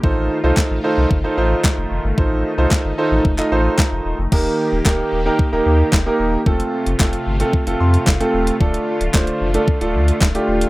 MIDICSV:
0, 0, Header, 1, 5, 480
1, 0, Start_track
1, 0, Tempo, 535714
1, 31, Time_signature, 4, 2, 24, 8
1, 9582, End_track
2, 0, Start_track
2, 0, Title_t, "Grand piano"
2, 0, Program_c, 0, 0
2, 31, Note_on_c, 0, 63, 87
2, 33, Note_on_c, 0, 65, 76
2, 34, Note_on_c, 0, 69, 78
2, 36, Note_on_c, 0, 72, 96
2, 320, Note_off_c, 0, 63, 0
2, 321, Note_off_c, 0, 65, 0
2, 322, Note_off_c, 0, 69, 0
2, 323, Note_off_c, 0, 72, 0
2, 390, Note_on_c, 0, 63, 84
2, 391, Note_on_c, 0, 65, 78
2, 393, Note_on_c, 0, 69, 80
2, 395, Note_on_c, 0, 72, 94
2, 680, Note_off_c, 0, 63, 0
2, 681, Note_off_c, 0, 65, 0
2, 681, Note_off_c, 0, 69, 0
2, 682, Note_off_c, 0, 72, 0
2, 750, Note_on_c, 0, 63, 82
2, 751, Note_on_c, 0, 65, 78
2, 753, Note_on_c, 0, 69, 78
2, 754, Note_on_c, 0, 72, 95
2, 1040, Note_off_c, 0, 63, 0
2, 1041, Note_off_c, 0, 65, 0
2, 1041, Note_off_c, 0, 69, 0
2, 1042, Note_off_c, 0, 72, 0
2, 1111, Note_on_c, 0, 63, 87
2, 1113, Note_on_c, 0, 65, 73
2, 1115, Note_on_c, 0, 69, 78
2, 1116, Note_on_c, 0, 72, 94
2, 1208, Note_off_c, 0, 63, 0
2, 1209, Note_off_c, 0, 65, 0
2, 1209, Note_off_c, 0, 69, 0
2, 1210, Note_off_c, 0, 72, 0
2, 1231, Note_on_c, 0, 63, 83
2, 1232, Note_on_c, 0, 65, 78
2, 1234, Note_on_c, 0, 69, 76
2, 1235, Note_on_c, 0, 72, 96
2, 1810, Note_off_c, 0, 63, 0
2, 1810, Note_off_c, 0, 65, 0
2, 1811, Note_off_c, 0, 69, 0
2, 1812, Note_off_c, 0, 72, 0
2, 1949, Note_on_c, 0, 63, 84
2, 1951, Note_on_c, 0, 65, 76
2, 1952, Note_on_c, 0, 69, 75
2, 1954, Note_on_c, 0, 72, 94
2, 2239, Note_off_c, 0, 63, 0
2, 2240, Note_off_c, 0, 65, 0
2, 2241, Note_off_c, 0, 69, 0
2, 2242, Note_off_c, 0, 72, 0
2, 2310, Note_on_c, 0, 63, 82
2, 2312, Note_on_c, 0, 65, 80
2, 2313, Note_on_c, 0, 69, 75
2, 2314, Note_on_c, 0, 72, 96
2, 2600, Note_off_c, 0, 63, 0
2, 2601, Note_off_c, 0, 65, 0
2, 2602, Note_off_c, 0, 69, 0
2, 2602, Note_off_c, 0, 72, 0
2, 2670, Note_on_c, 0, 63, 89
2, 2672, Note_on_c, 0, 65, 77
2, 2673, Note_on_c, 0, 69, 79
2, 2675, Note_on_c, 0, 72, 94
2, 2960, Note_off_c, 0, 63, 0
2, 2961, Note_off_c, 0, 65, 0
2, 2962, Note_off_c, 0, 69, 0
2, 2962, Note_off_c, 0, 72, 0
2, 3029, Note_on_c, 0, 63, 87
2, 3031, Note_on_c, 0, 65, 79
2, 3032, Note_on_c, 0, 69, 74
2, 3033, Note_on_c, 0, 75, 90
2, 3127, Note_off_c, 0, 63, 0
2, 3127, Note_off_c, 0, 65, 0
2, 3128, Note_off_c, 0, 69, 0
2, 3129, Note_off_c, 0, 75, 0
2, 3151, Note_on_c, 0, 63, 85
2, 3151, Note_on_c, 0, 65, 77
2, 3153, Note_on_c, 0, 69, 78
2, 3154, Note_on_c, 0, 72, 95
2, 3729, Note_off_c, 0, 63, 0
2, 3730, Note_off_c, 0, 65, 0
2, 3730, Note_off_c, 0, 69, 0
2, 3731, Note_off_c, 0, 72, 0
2, 3870, Note_on_c, 0, 58, 85
2, 3872, Note_on_c, 0, 63, 75
2, 3873, Note_on_c, 0, 67, 77
2, 3874, Note_on_c, 0, 70, 96
2, 4256, Note_off_c, 0, 58, 0
2, 4257, Note_off_c, 0, 63, 0
2, 4258, Note_off_c, 0, 67, 0
2, 4258, Note_off_c, 0, 70, 0
2, 4349, Note_on_c, 0, 58, 81
2, 4350, Note_on_c, 0, 63, 75
2, 4352, Note_on_c, 0, 67, 77
2, 4353, Note_on_c, 0, 70, 89
2, 4640, Note_off_c, 0, 58, 0
2, 4640, Note_off_c, 0, 63, 0
2, 4641, Note_off_c, 0, 67, 0
2, 4641, Note_off_c, 0, 70, 0
2, 4710, Note_on_c, 0, 58, 82
2, 4710, Note_on_c, 0, 63, 75
2, 4712, Note_on_c, 0, 67, 77
2, 4714, Note_on_c, 0, 70, 95
2, 4903, Note_off_c, 0, 58, 0
2, 4904, Note_off_c, 0, 63, 0
2, 4905, Note_off_c, 0, 67, 0
2, 4906, Note_off_c, 0, 70, 0
2, 4951, Note_on_c, 0, 58, 83
2, 4952, Note_on_c, 0, 63, 80
2, 4953, Note_on_c, 0, 67, 74
2, 4954, Note_on_c, 0, 70, 92
2, 5337, Note_off_c, 0, 58, 0
2, 5337, Note_off_c, 0, 63, 0
2, 5338, Note_off_c, 0, 67, 0
2, 5338, Note_off_c, 0, 70, 0
2, 5431, Note_on_c, 0, 58, 90
2, 5432, Note_on_c, 0, 63, 83
2, 5434, Note_on_c, 0, 67, 77
2, 5436, Note_on_c, 0, 70, 98
2, 5720, Note_off_c, 0, 58, 0
2, 5721, Note_off_c, 0, 63, 0
2, 5722, Note_off_c, 0, 67, 0
2, 5723, Note_off_c, 0, 70, 0
2, 5791, Note_on_c, 0, 57, 87
2, 5791, Note_on_c, 0, 60, 77
2, 5793, Note_on_c, 0, 65, 81
2, 5795, Note_on_c, 0, 69, 94
2, 6177, Note_off_c, 0, 57, 0
2, 6177, Note_off_c, 0, 60, 0
2, 6178, Note_off_c, 0, 65, 0
2, 6179, Note_off_c, 0, 69, 0
2, 6271, Note_on_c, 0, 57, 84
2, 6272, Note_on_c, 0, 60, 75
2, 6274, Note_on_c, 0, 65, 78
2, 6275, Note_on_c, 0, 69, 87
2, 6561, Note_off_c, 0, 57, 0
2, 6561, Note_off_c, 0, 60, 0
2, 6562, Note_off_c, 0, 65, 0
2, 6562, Note_off_c, 0, 69, 0
2, 6630, Note_on_c, 0, 57, 84
2, 6632, Note_on_c, 0, 60, 76
2, 6633, Note_on_c, 0, 65, 76
2, 6635, Note_on_c, 0, 69, 90
2, 6824, Note_off_c, 0, 57, 0
2, 6825, Note_off_c, 0, 60, 0
2, 6825, Note_off_c, 0, 65, 0
2, 6826, Note_off_c, 0, 69, 0
2, 6871, Note_on_c, 0, 57, 84
2, 6872, Note_on_c, 0, 60, 78
2, 6874, Note_on_c, 0, 65, 80
2, 6876, Note_on_c, 0, 69, 96
2, 6992, Note_on_c, 0, 84, 74
2, 7215, Note_off_c, 0, 84, 0
2, 7233, Note_on_c, 0, 77, 73
2, 7257, Note_off_c, 0, 57, 0
2, 7257, Note_off_c, 0, 60, 0
2, 7258, Note_off_c, 0, 65, 0
2, 7259, Note_off_c, 0, 69, 0
2, 7350, Note_on_c, 0, 57, 89
2, 7351, Note_on_c, 0, 60, 83
2, 7353, Note_on_c, 0, 65, 84
2, 7355, Note_on_c, 0, 69, 99
2, 7640, Note_off_c, 0, 57, 0
2, 7640, Note_off_c, 0, 60, 0
2, 7641, Note_off_c, 0, 65, 0
2, 7642, Note_off_c, 0, 69, 0
2, 7679, Note_off_c, 0, 77, 0
2, 7711, Note_on_c, 0, 57, 85
2, 7713, Note_on_c, 0, 62, 80
2, 7714, Note_on_c, 0, 65, 78
2, 7715, Note_on_c, 0, 69, 97
2, 8097, Note_off_c, 0, 57, 0
2, 8098, Note_off_c, 0, 62, 0
2, 8098, Note_off_c, 0, 65, 0
2, 8099, Note_off_c, 0, 69, 0
2, 8190, Note_on_c, 0, 57, 84
2, 8192, Note_on_c, 0, 62, 81
2, 8193, Note_on_c, 0, 65, 76
2, 8195, Note_on_c, 0, 72, 91
2, 8480, Note_off_c, 0, 57, 0
2, 8481, Note_off_c, 0, 62, 0
2, 8481, Note_off_c, 0, 65, 0
2, 8482, Note_off_c, 0, 72, 0
2, 8550, Note_on_c, 0, 57, 84
2, 8551, Note_on_c, 0, 62, 80
2, 8553, Note_on_c, 0, 65, 76
2, 8555, Note_on_c, 0, 69, 91
2, 8744, Note_off_c, 0, 57, 0
2, 8744, Note_off_c, 0, 62, 0
2, 8745, Note_off_c, 0, 65, 0
2, 8746, Note_off_c, 0, 69, 0
2, 8790, Note_on_c, 0, 57, 88
2, 8791, Note_on_c, 0, 62, 78
2, 8792, Note_on_c, 0, 65, 79
2, 8793, Note_on_c, 0, 69, 97
2, 9176, Note_off_c, 0, 57, 0
2, 9177, Note_off_c, 0, 62, 0
2, 9177, Note_off_c, 0, 65, 0
2, 9178, Note_off_c, 0, 69, 0
2, 9270, Note_on_c, 0, 57, 87
2, 9272, Note_on_c, 0, 62, 83
2, 9273, Note_on_c, 0, 65, 80
2, 9275, Note_on_c, 0, 67, 98
2, 9560, Note_off_c, 0, 57, 0
2, 9561, Note_off_c, 0, 62, 0
2, 9561, Note_off_c, 0, 65, 0
2, 9562, Note_off_c, 0, 67, 0
2, 9582, End_track
3, 0, Start_track
3, 0, Title_t, "Supersaw synth"
3, 0, Program_c, 1, 81
3, 30, Note_on_c, 1, 57, 71
3, 30, Note_on_c, 1, 65, 86
3, 31, Note_on_c, 1, 51, 80
3, 1932, Note_off_c, 1, 65, 0
3, 1953, Note_on_c, 1, 63, 84
3, 3835, Note_off_c, 1, 51, 0
3, 3835, Note_off_c, 1, 57, 0
3, 3853, Note_off_c, 1, 63, 0
3, 3870, Note_on_c, 1, 58, 70
3, 3870, Note_on_c, 1, 67, 84
3, 3871, Note_on_c, 1, 51, 77
3, 5772, Note_off_c, 1, 51, 0
3, 5772, Note_off_c, 1, 58, 0
3, 5772, Note_off_c, 1, 67, 0
3, 5790, Note_on_c, 1, 48, 76
3, 5790, Note_on_c, 1, 57, 75
3, 5790, Note_on_c, 1, 65, 86
3, 7691, Note_off_c, 1, 48, 0
3, 7709, Note_on_c, 1, 50, 80
3, 9582, Note_off_c, 1, 50, 0
3, 9582, Note_off_c, 1, 57, 0
3, 9582, Note_off_c, 1, 65, 0
3, 9582, End_track
4, 0, Start_track
4, 0, Title_t, "Sub bass"
4, 0, Program_c, 2, 38
4, 32, Note_on_c, 2, 33, 106
4, 264, Note_off_c, 2, 33, 0
4, 392, Note_on_c, 2, 36, 82
4, 469, Note_off_c, 2, 36, 0
4, 632, Note_on_c, 2, 33, 88
4, 709, Note_off_c, 2, 33, 0
4, 873, Note_on_c, 2, 36, 88
4, 950, Note_off_c, 2, 36, 0
4, 992, Note_on_c, 2, 31, 108
4, 1146, Note_off_c, 2, 31, 0
4, 1232, Note_on_c, 2, 33, 91
4, 1386, Note_off_c, 2, 33, 0
4, 1591, Note_on_c, 2, 29, 96
4, 1669, Note_off_c, 2, 29, 0
4, 1710, Note_on_c, 2, 29, 88
4, 1788, Note_off_c, 2, 29, 0
4, 1831, Note_on_c, 2, 31, 89
4, 1908, Note_off_c, 2, 31, 0
4, 1951, Note_on_c, 2, 33, 101
4, 2184, Note_off_c, 2, 33, 0
4, 2310, Note_on_c, 2, 36, 83
4, 2388, Note_off_c, 2, 36, 0
4, 2551, Note_on_c, 2, 31, 83
4, 2628, Note_off_c, 2, 31, 0
4, 2790, Note_on_c, 2, 33, 92
4, 2868, Note_off_c, 2, 33, 0
4, 2911, Note_on_c, 2, 29, 98
4, 3066, Note_off_c, 2, 29, 0
4, 3151, Note_on_c, 2, 33, 92
4, 3306, Note_off_c, 2, 33, 0
4, 3511, Note_on_c, 2, 29, 94
4, 3588, Note_off_c, 2, 29, 0
4, 3630, Note_on_c, 2, 27, 86
4, 3708, Note_off_c, 2, 27, 0
4, 3751, Note_on_c, 2, 29, 80
4, 3828, Note_off_c, 2, 29, 0
4, 3871, Note_on_c, 2, 27, 106
4, 4026, Note_off_c, 2, 27, 0
4, 4232, Note_on_c, 2, 27, 99
4, 4309, Note_off_c, 2, 27, 0
4, 4350, Note_on_c, 2, 26, 92
4, 4505, Note_off_c, 2, 26, 0
4, 4590, Note_on_c, 2, 27, 87
4, 4745, Note_off_c, 2, 27, 0
4, 4950, Note_on_c, 2, 27, 93
4, 5028, Note_off_c, 2, 27, 0
4, 5070, Note_on_c, 2, 39, 98
4, 5225, Note_off_c, 2, 39, 0
4, 5310, Note_on_c, 2, 27, 98
4, 5465, Note_off_c, 2, 27, 0
4, 5550, Note_on_c, 2, 27, 90
4, 5705, Note_off_c, 2, 27, 0
4, 5791, Note_on_c, 2, 29, 103
4, 5946, Note_off_c, 2, 29, 0
4, 6150, Note_on_c, 2, 29, 94
4, 6228, Note_off_c, 2, 29, 0
4, 6269, Note_on_c, 2, 29, 98
4, 6425, Note_off_c, 2, 29, 0
4, 6510, Note_on_c, 2, 31, 92
4, 6665, Note_off_c, 2, 31, 0
4, 6870, Note_on_c, 2, 29, 94
4, 6948, Note_off_c, 2, 29, 0
4, 6991, Note_on_c, 2, 41, 96
4, 7146, Note_off_c, 2, 41, 0
4, 7229, Note_on_c, 2, 29, 95
4, 7385, Note_off_c, 2, 29, 0
4, 7471, Note_on_c, 2, 27, 90
4, 7626, Note_off_c, 2, 27, 0
4, 7711, Note_on_c, 2, 26, 115
4, 7866, Note_off_c, 2, 26, 0
4, 8069, Note_on_c, 2, 26, 94
4, 8147, Note_off_c, 2, 26, 0
4, 8189, Note_on_c, 2, 26, 97
4, 8344, Note_off_c, 2, 26, 0
4, 8431, Note_on_c, 2, 29, 92
4, 8586, Note_off_c, 2, 29, 0
4, 8790, Note_on_c, 2, 26, 91
4, 8910, Note_on_c, 2, 38, 98
4, 8923, Note_off_c, 2, 26, 0
4, 9065, Note_off_c, 2, 38, 0
4, 9150, Note_on_c, 2, 26, 97
4, 9305, Note_off_c, 2, 26, 0
4, 9390, Note_on_c, 2, 27, 84
4, 9545, Note_off_c, 2, 27, 0
4, 9582, End_track
5, 0, Start_track
5, 0, Title_t, "Drums"
5, 32, Note_on_c, 9, 36, 112
5, 121, Note_off_c, 9, 36, 0
5, 510, Note_on_c, 9, 36, 109
5, 511, Note_on_c, 9, 39, 103
5, 520, Note_on_c, 9, 38, 78
5, 600, Note_off_c, 9, 36, 0
5, 600, Note_off_c, 9, 39, 0
5, 610, Note_off_c, 9, 38, 0
5, 992, Note_on_c, 9, 36, 111
5, 1081, Note_off_c, 9, 36, 0
5, 1471, Note_on_c, 9, 36, 113
5, 1473, Note_on_c, 9, 39, 107
5, 1482, Note_on_c, 9, 38, 83
5, 1560, Note_off_c, 9, 36, 0
5, 1562, Note_off_c, 9, 39, 0
5, 1572, Note_off_c, 9, 38, 0
5, 1952, Note_on_c, 9, 36, 118
5, 2041, Note_off_c, 9, 36, 0
5, 2430, Note_on_c, 9, 36, 107
5, 2430, Note_on_c, 9, 39, 98
5, 2440, Note_on_c, 9, 38, 79
5, 2519, Note_off_c, 9, 36, 0
5, 2520, Note_off_c, 9, 39, 0
5, 2529, Note_off_c, 9, 38, 0
5, 2911, Note_on_c, 9, 36, 103
5, 3001, Note_off_c, 9, 36, 0
5, 3031, Note_on_c, 9, 39, 70
5, 3121, Note_off_c, 9, 39, 0
5, 3390, Note_on_c, 9, 36, 113
5, 3392, Note_on_c, 9, 39, 111
5, 3402, Note_on_c, 9, 38, 86
5, 3480, Note_off_c, 9, 36, 0
5, 3482, Note_off_c, 9, 39, 0
5, 3491, Note_off_c, 9, 38, 0
5, 3871, Note_on_c, 9, 36, 115
5, 3871, Note_on_c, 9, 49, 96
5, 3961, Note_off_c, 9, 36, 0
5, 3961, Note_off_c, 9, 49, 0
5, 4350, Note_on_c, 9, 36, 104
5, 4350, Note_on_c, 9, 39, 97
5, 4360, Note_on_c, 9, 38, 82
5, 4439, Note_off_c, 9, 36, 0
5, 4440, Note_off_c, 9, 39, 0
5, 4450, Note_off_c, 9, 38, 0
5, 4831, Note_on_c, 9, 36, 112
5, 4921, Note_off_c, 9, 36, 0
5, 5310, Note_on_c, 9, 36, 119
5, 5312, Note_on_c, 9, 39, 111
5, 5322, Note_on_c, 9, 38, 92
5, 5400, Note_off_c, 9, 36, 0
5, 5402, Note_off_c, 9, 39, 0
5, 5412, Note_off_c, 9, 38, 0
5, 5791, Note_on_c, 9, 36, 120
5, 5881, Note_off_c, 9, 36, 0
5, 5911, Note_on_c, 9, 42, 52
5, 6001, Note_off_c, 9, 42, 0
5, 6151, Note_on_c, 9, 42, 72
5, 6240, Note_off_c, 9, 42, 0
5, 6269, Note_on_c, 9, 36, 107
5, 6269, Note_on_c, 9, 39, 103
5, 6279, Note_on_c, 9, 38, 81
5, 6359, Note_off_c, 9, 36, 0
5, 6359, Note_off_c, 9, 39, 0
5, 6368, Note_off_c, 9, 38, 0
5, 6388, Note_on_c, 9, 42, 45
5, 6477, Note_off_c, 9, 42, 0
5, 6630, Note_on_c, 9, 42, 72
5, 6719, Note_off_c, 9, 42, 0
5, 6750, Note_on_c, 9, 36, 105
5, 6840, Note_off_c, 9, 36, 0
5, 6871, Note_on_c, 9, 42, 54
5, 6961, Note_off_c, 9, 42, 0
5, 7112, Note_on_c, 9, 42, 64
5, 7202, Note_off_c, 9, 42, 0
5, 7230, Note_on_c, 9, 36, 115
5, 7232, Note_on_c, 9, 39, 111
5, 7241, Note_on_c, 9, 38, 88
5, 7319, Note_off_c, 9, 36, 0
5, 7321, Note_off_c, 9, 39, 0
5, 7331, Note_off_c, 9, 38, 0
5, 7352, Note_on_c, 9, 42, 57
5, 7442, Note_off_c, 9, 42, 0
5, 7590, Note_on_c, 9, 42, 83
5, 7680, Note_off_c, 9, 42, 0
5, 7711, Note_on_c, 9, 36, 116
5, 7800, Note_off_c, 9, 36, 0
5, 7832, Note_on_c, 9, 42, 51
5, 7921, Note_off_c, 9, 42, 0
5, 8071, Note_on_c, 9, 42, 75
5, 8161, Note_off_c, 9, 42, 0
5, 8189, Note_on_c, 9, 36, 111
5, 8190, Note_on_c, 9, 39, 102
5, 8199, Note_on_c, 9, 38, 78
5, 8279, Note_off_c, 9, 36, 0
5, 8279, Note_off_c, 9, 39, 0
5, 8289, Note_off_c, 9, 38, 0
5, 8308, Note_on_c, 9, 42, 44
5, 8397, Note_off_c, 9, 42, 0
5, 8550, Note_on_c, 9, 42, 70
5, 8639, Note_off_c, 9, 42, 0
5, 8671, Note_on_c, 9, 36, 106
5, 8760, Note_off_c, 9, 36, 0
5, 8792, Note_on_c, 9, 42, 52
5, 8881, Note_off_c, 9, 42, 0
5, 9033, Note_on_c, 9, 42, 68
5, 9122, Note_off_c, 9, 42, 0
5, 9150, Note_on_c, 9, 36, 115
5, 9152, Note_on_c, 9, 39, 107
5, 9162, Note_on_c, 9, 38, 91
5, 9239, Note_off_c, 9, 36, 0
5, 9242, Note_off_c, 9, 39, 0
5, 9251, Note_off_c, 9, 38, 0
5, 9272, Note_on_c, 9, 42, 54
5, 9362, Note_off_c, 9, 42, 0
5, 9510, Note_on_c, 9, 42, 84
5, 9582, Note_off_c, 9, 42, 0
5, 9582, End_track
0, 0, End_of_file